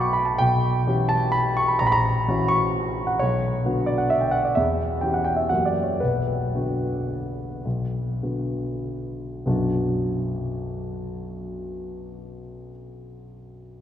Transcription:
Already playing: B1 F#3 B3 F#4 F#5 G5 A5 B5 D6
0.00 C#6
0.13 B5
0.25 A5
0.38 B1 G5
0.87 E3 C#4 G4
1.09 A5
1.32 B5
1.57 C#6
1.68 B5
1.79 A#1 A#5
1.87 B5
1.92 A#5
2.28 E3 C#4 F#4
2.48 C#6
3.07 F#5
3.19 B1 C#5
3.66 D3 B3 F#4
3.86 D5
3.98 F#5
4.10 E5
4.21 G5
4.31 F#5
4.45 D5
4.55 E2 E5
5.01 E3 C#4 G4 G5
5.14 F#5
5.24 G5
5.36 E5
5.49 F#2 E3 A#3 G4 F#5
5.65 D5
5.83 C#5
6.00 B1 B4
6.55 D3 B3 F#4
7.65 B1
8.23 D3 B3 F#4
9.46 B1 F#2 F#3 B3 D4 F#4

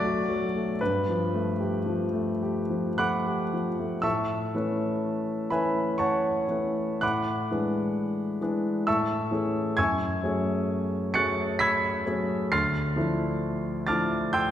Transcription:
Already playing: B1 F#3 A3 F#4 D5 E5 F#5 A5 D6 F#6
0.04 F#4
0.29 F#3
0.56 A3
0.81 G2 B4
1.09 F3
1.34 A3
1.60 G4
1.86 F3
2.13 A3
2.43 G4
2.70 F3
2.98 A3 F#5 B5 D6 F#6
3.26 G4
3.53 F3
3.79 A3
4.02 A2 E5 A5 C#6 E6
4.54 E3 A3 C#4 B4
5.50 E3 A3 C#4 B4 E5 G#5 B5
5.98 C#5 F#5 A5 C#6
6.49 E3 A3 C#4 B4
7.01 A2 F#5 B5 D6 F#6
7.51 E3 G#3 D4 B4
8.41 E3 G#3 D4 B4
8.87 A2 E5 A5 C#6 E6
9.31 E3 A3 C#4 G#4
9.77 F#2 G#5 C#6 E6 G#6
10.23 F#3 A3 C#4 G#4
11.14 F#3 A3 C#4 G#4 C#6 F#6 A6 C#7
11.59 B5 E6 G#6 B6
12.06 F#3 A3 C#4 G#4
12.52 D2 C6 F6 A6 C7
12.96 F3 A3 D4 E4
13.87 F3 A3 D4 E4 A5 D6 F6 A6
14.33 G5 C6 E6 G6

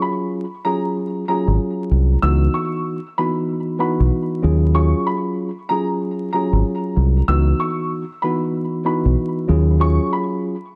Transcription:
Already playing: F#3 C#4 F4 G#4
0.02 B5
0.65 F#3 C#4 F4 G#4 A#5
1.28 F#3 C#4 F4 G#4 A#5
1.48 G#1
1.91 C2
2.22 C#2 E3 B3 D#4 F#4 E6
2.54 C#6
3.18 E3 B3 D#4 F#4 B5
3.79 E3 B3 D#4 F#4 B5
4.00 B1
4.42 D#2 F#3 C#4 F4 G#4
4.74 F#3 C#4 F4 G#4 C#6
5.07 B5
5.69 F#3 C#4 F4 G#4 A#5
6.33 F#3 C#4 F4 G#4 A#5
6.53 G#1
6.97 C2
7.28 C#2 E3 B3 D#4 F#4 E6
7.60 C#6
8.22 E3 B3 D#4 F#4 B5
8.85 E3 B3 D#4 F#4 B5
9.06 B1
9.48 D#2 F#3 C#4 F4 G#4
9.79 F#3 C#4 F4 G#4 C#6
10.13 B5

